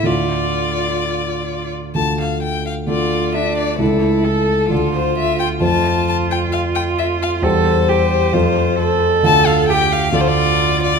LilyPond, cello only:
\new Staff \with { instrumentName = "Cello" } { \time 4/4 \key d \minor \tempo 4 = 132 f'2.~ f'8 r8 | r2 f'4 d'4 | e'4 a'4 f'2 | f'1 |
a'4 g'4 f'4 a'4~ | a'4 g'4 f'2 | }